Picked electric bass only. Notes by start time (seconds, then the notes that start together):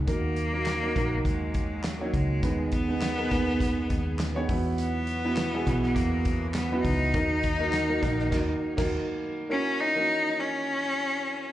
0.07 D#2
0.96 A#1
1.25 D#2
2.14 C#2
2.43 D#2
3.31 D#2
3.90 D#2
4.49 E2
5.67 B1
5.96 E2
6.85 C#2
7.14 D#2
8.02 A#1
8.32 D#2
8.78 D#2